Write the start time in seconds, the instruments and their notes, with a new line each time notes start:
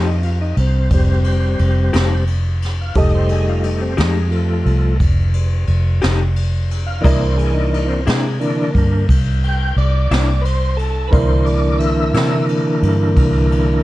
Already playing: fingered electric bass F2, upright piano G4 A4 D#5
0.07 tonewheel organ D#4
0.23 tonewheel organ F4, ride
0.41 tonewheel organ D#4
0.57 fingered electric bass C2, tonewheel organ C4, ride
0.90 fingered electric bass F1, tonewheel organ G3 C4, kick, ride
1.24 ride
1.59 fingered electric bass F1, ride
1.93 fingered electric bass F1, clean electric guitar F3 A3 D#4 G4, snare, ride
2.27 ride
2.62 snare, ride
2.81 tonewheel organ F5
2.95 fingered electric bass F1, tonewheel organ G3 A3 D#4 D#5, upright piano G4 A4 D#5, kick, ride
3.15 tonewheel organ C5
3.29 tonewheel organ G#4, ride
3.49 tonewheel organ F4
3.64 tonewheel organ D#4, ride
3.82 tonewheel organ C4
3.97 fingered electric bass F2, clean electric guitar F3 A3 D#4 G4, tonewheel organ G#3, snare, ride
4.29 tonewheel organ F3 A3, ride
4.66 fingered electric bass C2, ride
5.00 fingered electric bass F1, kick, ride
5.33 ride
5.67 fingered electric bass F1, ride
6.01 fingered electric bass F1, clean electric guitar F3 A3 D#4 G4, snare, ride
6.36 ride
6.71 ride
6.86 tonewheel organ F5
7.01 fingered electric bass C2, clean electric guitar C3 A#3, tonewheel organ E3 A#3 D4 D#5, upright piano E4 A#4 D5, kick, ride
7.05 clean electric guitar D4 E4
7.20 tonewheel organ C5
7.37 tonewheel organ G#4, ride
7.53 tonewheel organ D#4
7.71 tonewheel organ D#4, ride
7.88 tonewheel organ C4
8.06 fingered electric bass C3, clean electric guitar C3 A#3 D4 E4, tonewheel organ G#3, snare, ride
8.40 tonewheel organ D3 E3 A#3 D4, ride
8.75 fingered electric bass G2, kick, ride
9.09 fingered electric bass C2, kick, ride
9.44 tonewheel organ G5, ride
9.76 fingered electric bass C2, tonewheel organ D5, ride
10.11 fingered electric bass C2, clean electric guitar C3 A#3 D4 E4, snare, ride
10.41 tonewheel organ B4, ride
10.45 tonewheel organ C5
10.77 tonewheel organ A4, ride
11.08 tonewheel organ E3 A#3 B4, upright piano E4
11.12 fingered electric bass C2, tonewheel organ D3 C5, upright piano A#4 D5, kick, ride
11.45 tonewheel organ D5, ride
11.79 tonewheel organ E5, ride
12.14 fingered electric bass C3, clean electric guitar C3 A#3 D4 E4, snare, ride
12.48 ride
12.83 fingered electric bass G2, ride
13.17 fingered electric bass C2, kick, ride
13.52 ride